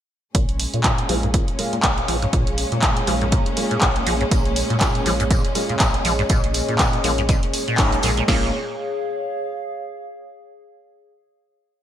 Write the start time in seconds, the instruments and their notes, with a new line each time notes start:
0.35 sub bass A#1, acid bass A#2, string section A#2 G#3 C#4, ambient pad G#4, kick, closed hi-hat
0.49 closed hi-hat
0.60 open hi-hat
0.67 ambient pad C#5
0.74 acid bass A#2, sub bass A#2, closed hi-hat
0.78 ambient pad F5
0.84 acid bass A#2, kick, clap, closed hi-hat
0.98 closed hi-hat
1.09 sub bass A#1, acid bass F3, grand piano G#3 A#3 C#4 F4, open hi-hat
1.23 acid bass G#2, closed hi-hat
1.34 acid bass A#2, kick, closed hi-hat
1.48 sub bass F1, closed hi-hat
1.59 grand piano G#3 A#3 C#4 F4, open hi-hat
1.73 acid bass A#2, closed hi-hat
1.83 sub bass A#1, acid bass A#2, kick, clap, closed hi-hat
1.98 closed hi-hat
2.08 sub bass A#1, acid bass F3, open hi-hat
2.22 acid bass G#2, closed hi-hat
2.33 sub bass A#1, acid bass A#2, kick, closed hi-hat
2.47 closed hi-hat
2.58 open hi-hat
2.72 sub bass A#2, acid bass A#2, closed hi-hat
2.82 acid bass A#2, kick, clap, closed hi-hat
2.97 closed hi-hat
3.07 sub bass A#1, acid bass F3, grand piano G#3 A#3 C#4 F4, open hi-hat
3.21 acid bass G#2, closed hi-hat
3.32 acid bass A#2, kick, closed hi-hat
3.46 sub bass F1, closed hi-hat
3.57 grand piano G#3 A#3 C#4 F4, open hi-hat
3.71 acid bass A#2, closed hi-hat
3.81 sub bass A#1, acid bass A#2, kick, clap, closed hi-hat
3.96 closed hi-hat
4.06 sub bass A#1, acid bass F3, open hi-hat
4.21 acid bass G#2, closed hi-hat
4.31 sub bass A#1, acid bass A#2, kick, closed hi-hat, tambourine
4.45 closed hi-hat
4.56 open hi-hat, tambourine
4.70 sub bass A#2, acid bass A#2, closed hi-hat
4.80 acid bass A#2, kick, snare, clap, closed hi-hat, tambourine
4.87 ambient pad D#5
4.95 closed hi-hat
5.06 sub bass A#1, acid bass F3, grand piano G#3 A#3 C#4 F4, open hi-hat, tambourine
5.20 acid bass G#2, closed hi-hat
5.31 acid bass A#2, kick, closed hi-hat, tambourine
5.45 sub bass F1, closed hi-hat
5.55 grand piano G#3 A#3 C#4 F4, open hi-hat, tambourine
5.69 acid bass A#2, closed hi-hat
5.80 sub bass A#1, acid bass A#2, kick, snare, clap, closed hi-hat, tambourine
5.94 snare, closed hi-hat
6.05 sub bass A#1, acid bass F3, open hi-hat, tambourine
6.18 acid bass G#2, snare, closed hi-hat
6.29 sub bass A#1, acid bass A#2, kick, closed hi-hat, tambourine
6.44 closed hi-hat
6.54 open hi-hat, tambourine
6.69 sub bass A#2, acid bass A#2, closed hi-hat
6.79 acid bass A#2, kick, snare, clap, closed hi-hat, tambourine
6.93 closed hi-hat
7.04 sub bass A#1, acid bass F3, grand piano G#3 A#3 C#4 F4, snare, open hi-hat, tambourine
7.18 acid bass G#2, closed hi-hat
7.29 acid bass A#2, kick, closed hi-hat, tambourine
7.43 sub bass F1, closed hi-hat
7.54 open hi-hat, tambourine
7.68 acid bass A#2, closed hi-hat
7.78 sub bass A#1, acid bass G#2, grand piano G#3 A#3 C#4 D#4, kick, snare, clap, closed hi-hat, tambourine
7.92 closed hi-hat
8.03 sub bass A#1, acid bass A#2, grand piano G#3 A#3 C#4 G#4, open hi-hat, tambourine
8.17 acid bass A#2, closed hi-hat
8.28 sub bass A#1, string section A#2 G#3 C#4, acid bass A#2, grand piano G#3 A#3 C#4 F4, ambient pad G#4, kick, snare, crash
8.37 ambient pad C#5
8.44 ambient pad F5